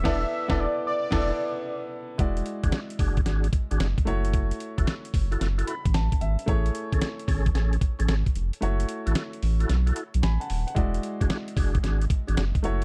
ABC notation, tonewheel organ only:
X:1
M:4/4
L:1/16
Q:"Swing 16ths" 1/4=112
K:Emix
V:1 name="Tonewheel organ"
[DEA]2 z [DEA]2 z3 [DEA]2 z6 | z3 [DFG] z2 [DFG] z [DFG] z2 [DFG] z4 | z3 [EFA] z3 [EFA] z [EFA] z6 | z3 [CGA] z2 [CGA] z [CGA] z2 [CGA] z4 |
z3 [EFA] z3 [EFA] z [EFA] z6 | z3 [DFG] z2 [DFG] z [DFG] z2 [DFG] z4 |]